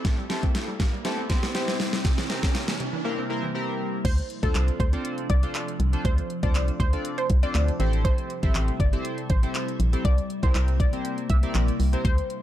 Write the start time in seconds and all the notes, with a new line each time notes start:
Already playing: C4 E4 G4 A4, riser
0.05 A2 C3 G3 A3 E4, kick, snare, closed hi-hat
0.18 G3
0.29 C4 E4 G4 A4, snare, closed hi-hat
0.43 C4, kick, closed hi-hat
0.55 A3, snare, closed hi-hat
0.68 G3
0.80 A2, kick, snare, closed hi-hat
0.93 G3
1.04 A3 C4 E4 G4 A4, snare, closed hi-hat
1.18 C4
1.29 C4 E4 G4 C5, kick, snare, closed hi-hat
1.43 G3, snare
1.54 C4 E4 G4 C5, snare, closed hi-hat
1.68 snare
1.80 snare, open hi-hat
1.93 snare
2.05 C3 A#3, kick, snare, closed hi-hat
2.18 E3, snare
2.29 C4 E4 G4 A#4, snare, closed hi-hat
2.43 C4, kick, snare, closed hi-hat
2.55 A#3, snare, closed hi-hat
2.68 E3, snare
2.80 C3, closed hi-hat
2.93 E3
3.04 A#3 C4 E4 G4 A#4
3.18 C4
3.30 C4 E4 G4 A#4
3.43 E3
3.55 C4 E4 G4 A#4
4.05 D2 C3 F3 A3 D4 C5, kick, closed hi-hat, crash
4.18 closed hi-hat
4.30 closed hi-hat
4.43 D2 C4 D4 F4 A4 C5, kick, closed hi-hat
4.55 C2, clap, closed hi-hat
4.68 closed hi-hat
4.80 D2 C5, kick, closed hi-hat
4.93 C4 D4 F4 A4 C5, closed hi-hat
5.05 closed hi-hat
5.18 closed hi-hat
5.30 C2 D5, kick, closed hi-hat
5.43 C4 D4 F4 A4 C5, closed hi-hat
5.55 clap, closed hi-hat
5.68 closed hi-hat
5.80 C2, closed hi-hat
5.93 C4 D4 F4 A4 C5, closed hi-hat
6.05 D2 C5, kick, closed hi-hat
6.18 closed hi-hat
6.30 closed hi-hat
6.43 D2 C4 D4 F4 A4 C5 D5, kick, closed hi-hat
6.55 C2, clap, closed hi-hat
6.68 closed hi-hat
6.80 D2 C5, kick, closed hi-hat
6.93 C4 D4 F4 A4 D5, closed hi-hat
7.05 closed hi-hat
7.18 C5, closed hi-hat
7.30 C2, kick, closed hi-hat
7.43 C4 D4 F4 A4 C5 D5, closed hi-hat
7.55 D2, clap, closed hi-hat
7.68 closed hi-hat
7.80 A1 G3 C4 E4 G4 A4 C5, closed hi-hat
7.93 closed hi-hat
8.05 C5, kick, closed hi-hat
8.18 closed hi-hat
8.30 closed hi-hat
8.43 A1 C4 E4 G4 A4 C5 E5, kick, closed hi-hat
8.55 A1, clap, closed hi-hat
8.68 closed hi-hat
8.80 G1 D5, kick, closed hi-hat
8.93 C4 E4 G4 A4 C5, closed hi-hat
9.05 closed hi-hat
9.18 closed hi-hat
9.30 A1 C5, kick, closed hi-hat
9.43 C4 E4 G4 A4 C5, closed hi-hat
9.55 clap, closed hi-hat
9.68 closed hi-hat
9.80 A#1, closed hi-hat
9.93 C4 E4 G4 A4 C5, closed hi-hat
10.05 C2 A#3 D5, kick, closed hi-hat
10.18 closed hi-hat
10.30 closed hi-hat
10.43 C2 C4 E4 G4 A#4 C5, kick, closed hi-hat
10.55 C2, clap, closed hi-hat
10.68 closed hi-hat
10.80 A#1 D5, kick, closed hi-hat
10.93 C4 E4 G4 A#4 C5, closed hi-hat
11.05 closed hi-hat
11.18 closed hi-hat
11.30 C2 E5, kick, closed hi-hat
11.43 C4 E4 G4 A#4 D5, closed hi-hat
11.55 A#1, clap, closed hi-hat
11.68 closed hi-hat
11.80 C2, open hi-hat
11.93 C4 E4 G4 A#4 C5, closed hi-hat
12.05 D2 F3 A3 D4 C5, kick, closed hi-hat
12.18 closed hi-hat
12.30 closed hi-hat